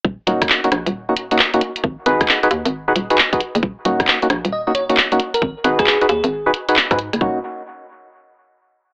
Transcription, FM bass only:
X:1
M:4/4
L:1/16
Q:"Swing 16ths" 1/4=134
K:Ebm
V:1 name="FM bass" clef=bass
E,,, z E,,, z3 B,,, E,,,4- E,,, z4 | A,,, z A,,, z3 E,, A,,,3 E,,, z4 G,,, | E,,, z E,,, z3 B,,, E,,,4- E,,, z4 | A,,, z A,,, z3 E,, A,,,3 z3 A,,2 G,,, |
E,,,2 z12 z2 |]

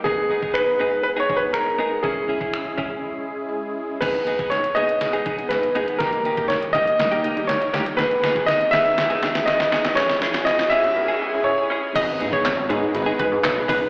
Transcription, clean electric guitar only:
X:1
M:4/4
L:1/16
Q:1/4=121
K:G#m
V:1 name="Clean electric guitar"
[B,DG]2 [B,DG] [B,DG] z2 [B,DG]2 z [B,DG] [B,DG] z3 [B,DG]2 | [CEG]2 [CEG] [CEG] z2 [CEG]2 z8 | [B,DG]2 [B,DG] [B,DG] z2 [B,DG]2 z [B,DG] [B,DG] z3 [B,DG]2 | [A,D=G]2 [A,DG] [A,DG] z2 [A,DG]2 z [A,DG] [A,DG] z3 [A,DG]2 |
[B,DG]2 [B,DG] [B,DG] z2 [B,DG]2 z [B,DG] [B,DG] z3 [B,DG]2 | [CEG]2 [CEG] [CEG] z2 [CEG]2 z [CEG] [CEG] z3 [CEG]2 | [B,DG]2 [B,DG] [B,DG] z2 [B,DG]2 z [B,DG] [B,DG] z3 [B,DG]2 |]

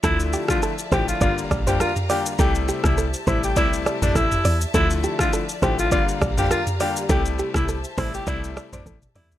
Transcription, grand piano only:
X:1
M:4/4
L:1/16
Q:"Swing 16ths" 1/4=102
K:Dm
V:1 name="Grand piano" clef=bass
[D,F,A,E]3 [D,F,A,E] z2 [D,F,A,E]2 [D,G,B,F]3 [D,G,B,F] z2 [D,G,B,F]2 | [C,G,A,E]3 [C,G,A,E] z2 [C,G,A,E]2 [C,G,A,E]3 [C,G,A,E] z4 | [D,F,A,E]3 [D,F,A,E] z2 [D,F,A,E]2 [D,G,B,F]3 [D,G,B,F] z2 [D,G,B,F]2 | [C,G,A,E]3 [C,G,A,E] z2 [C,G,A,E]2 [C,G,A,E]3 [C,G,A,E] z2 [C,G,A,E]2 |]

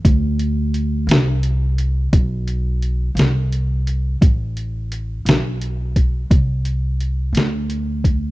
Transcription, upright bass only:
X:1
M:12/8
L:1/8
Q:3/8=58
K:Am
V:1 name="Upright bass" clef=bass
D,,3 C,,3 B,,,3 C,,3 | A,,,3 B,,,3 C,,3 D,,3 |]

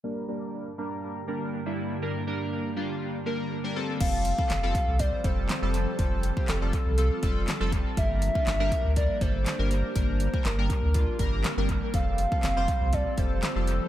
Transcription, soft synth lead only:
X:1
M:4/4
L:1/8
Q:1/4=121
K:Gm
V:1 name="Soft synth lead"
z8 | z8 | f4 d c2 c | c2 A4- A z |
=e4 d c2 c | z2 B4- B z | f4 d c2 c |]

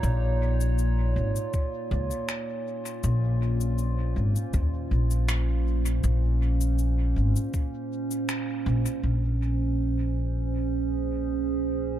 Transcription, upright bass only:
X:1
M:4/4
L:1/8
Q:1/4=80
K:Bbm
V:1 name="Upright bass" clef=bass
B,,,3 A,,, z D,, z2 | B,,,3 A,,, E,, B,,,3 | B,,,3 A,,, z3 B,,, | B,,,8 |]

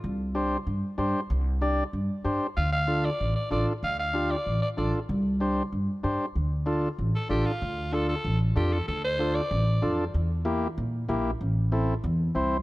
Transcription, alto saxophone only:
X:1
M:4/4
L:1/8
Q:1/4=190
K:Dm
V:1 name="Alto saxophone"
z8 | z8 | f f2 d2 d d z | f f2 d2 d d z |
z8 | z4 z A G F- | F2 A A2 z G A | A c2 d4 z |
z8 | z8 |]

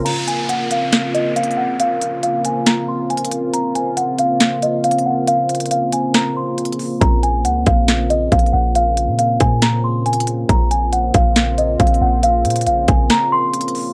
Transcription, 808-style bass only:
X:1
M:4/4
L:1/16
Q:1/4=138
K:Bbm
V:1 name="808-style bass" clef=bass
z16 | z16 | z16 | z16 |
B,,,4 D,,2 B,,,6 B,,,2 B,,,2- | B,,,3 B,,3 B,,8- B,,2 | B,,,6 B,,,6 B,,,2 B,,,2- | B,,,2 B,,2 B,,,2 B,,,2 z8 |]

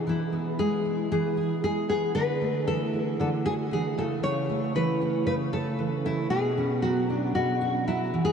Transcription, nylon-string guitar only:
X:1
M:4/4
L:1/16
Q:1/4=115
K:A
V:1 name="Nylon-string guitar"
E4 G4 G4 G2 G2 | B4 A4 A2 G2 G2 A2 | c4 B4 B2 A4 E2 | G4 F4 F4 E3 G |]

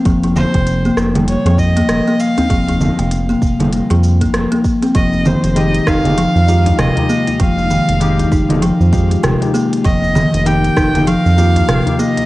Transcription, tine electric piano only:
X:1
M:4/4
L:1/16
Q:"Swing 16ths" 1/4=98
K:Fm
V:1 name="Tine electric piano"
z16 | z16 | z4 [A,EG]3 [A,EG] z2 [A,EG]3 [A,EG]3- | [A,EG]4 [A,EG]3 [A,EG] z2 [A,EG]3 [A,EG]3 |
z4 [B,EG]3 [B,EG] z2 [B,EG]3 [B,EG]3 |]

